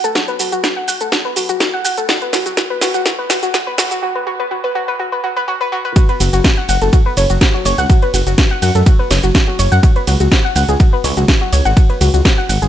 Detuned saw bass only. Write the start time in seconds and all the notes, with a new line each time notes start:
6.20 F#1
6.33 F#1
6.69 F#1
6.82 F#1
7.17 F#1
7.30 F#1
7.65 F#1
7.78 C#2
8.14 F#1
8.27 F#1
8.62 F#2
8.75 F#2
9.11 F#1
9.23 F#1
9.59 F#1
9.72 F#2
10.07 C#2
10.20 C#2
10.56 C#2
10.68 C#2
11.04 C#2
11.17 C#2
11.53 C#2
11.65 G#1
12.01 C#2
12.14 C#2
12.49 G#1
12.62 G#1